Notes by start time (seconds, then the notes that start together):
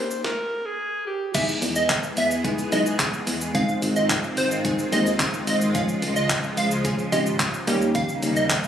Already playing: D#3 A#3 C#4 D#4 G4 C5
0.11 shaker
0.24 A#4, kick, snare
0.65 G#4
1.07 G4
1.34 E3 G#3 B3 D#4 E4 G#4 E5, kick, closed hi-hat, crash, tambourine, shaker
1.48 shaker
1.62 E2, open hi-hat, tambourine, shaker
1.76 D#5, tambourine, shaker
1.89 kick, clap, closed hi-hat, tambourine, shaker
2.03 shaker
2.17 E2 E5, open hi-hat, tambourine, shaker
2.31 tambourine, shaker
2.44 G#3 B3 D#4 E4 G#4, kick, closed hi-hat, tambourine, shaker
2.58 tambourine, shaker
2.72 B1 G#3 B3 D#4 E4 G#4 D#5, open hi-hat, tambourine, shaker
2.86 shaker
2.99 kick, clap, closed hi-hat, tambourine, shaker
3.14 shaker
3.27 E2, open hi-hat, tambourine, shaker
3.41 shaker
3.54 D#3 G#3 C4 D#4 F4 G#4 F5, kick, closed hi-hat, tambourine, shaker
3.69 shaker
3.82 G#1, open hi-hat, tambourine, shaker
3.96 D#5, tambourine, shaker
4.09 kick, clap, closed hi-hat, tambourine, shaker
4.23 shaker
4.37 G#1 C5, open hi-hat, tambourine, shaker
4.51 shaker
4.65 G#3 C4 D#4 F4 G#4, kick, closed hi-hat, tambourine, shaker
4.78 tambourine, shaker
4.92 D#2 G#3 C4 D#4 F4 G#4 D#5, open hi-hat, tambourine, shaker
5.06 tambourine, shaker
5.20 kick, clap, closed hi-hat, tambourine, shaker
5.34 shaker
5.47 G#1 D#5, open hi-hat, tambourine, shaker
5.61 shaker
5.75 C#3 F3 G#3 C#4 F4 G#4 F5, kick, closed hi-hat, tambourine, shaker
5.89 shaker
6.02 C#2, open hi-hat, tambourine, shaker
6.16 D#5, tambourine, shaker
6.30 kick, clap, closed hi-hat, tambourine, shaker
6.43 shaker
6.57 C#2 F5, open hi-hat, tambourine, shaker
6.71 tambourine, shaker
6.85 F3 G#3 C#4 F4 G#4, kick, closed hi-hat, tambourine, shaker
6.98 tambourine, shaker
7.12 G#1 F3 G#3 C#4 F4 G4 D#5, open hi-hat, tambourine, shaker
7.26 tambourine, shaker
7.40 kick, clap, closed hi-hat, tambourine, shaker
7.54 shaker
7.67 D#2 G3 A#3 C#4 D#4 G4, open hi-hat, tambourine, shaker
7.82 shaker
7.95 F5, kick, closed hi-hat, tambourine, shaker
8.09 shaker
8.22 D#2, open hi-hat, tambourine, shaker
8.36 D#5, tambourine, shaker
8.50 kick, clap, closed hi-hat, tambourine, shaker
8.64 shaker